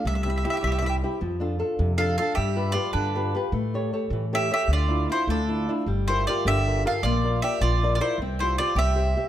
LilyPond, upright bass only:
\new Staff \with { instrumentName = "Upright bass" } { \clef bass \time 6/8 \key g \dorian \tempo 4. = 104 c,4. c,4. | f,4. f,4. | g,4. g,4. | a,4. a,4. |
d,4. d,4. | g,,4. g,,4. | bes,,4. bes,,4. | c,4. c,4. | }